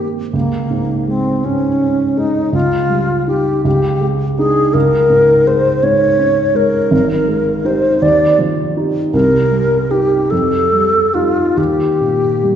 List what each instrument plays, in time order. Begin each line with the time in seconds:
Already playing: grand piano G#2 D#3 A#3 C4
0.33 grand piano C#2, alto flute A#3
0.70 grand piano G#2
1.08 grand piano G#3, alto flute C4
1.44 grand piano G#2, alto flute C#4
1.81 grand piano C#4
2.17 grand piano G#3, alto flute D#4
2.53 grand piano C#2, alto flute F4
2.90 grand piano G3
3.28 grand piano D#4 F4, alto flute G4
3.65 grand piano C#2, alto flute G4
4.01 grand piano G#3
4.38 grand piano D4 D#4, alto flute G#4
4.74 grand piano C#2, alto flute A#4
5.10 grand piano G#2
5.47 grand piano G#3, alto flute C5
5.83 grand piano G#2, alto flute C#5
6.19 grand piano C#4
6.54 grand piano G#3, alto flute A#4
6.91 grand piano G#1
7.28 grand piano G#3
7.65 grand piano D#4 G4, alto flute C5
8.02 grand piano D#2, alto flute D5
8.39 grand piano F3
8.77 grand piano D#4 G4
9.13 grand piano C2, alto flute A#4
9.51 grand piano G3
9.91 grand piano D#4 G4, alto flute G4
10.30 grand piano F2, alto flute A4
10.73 grand piano G3
11.14 grand piano D#4 G4, alto flute F4
11.57 grand piano D#2, alto flute G4
12.01 grand piano A#2
12.43 grand piano G3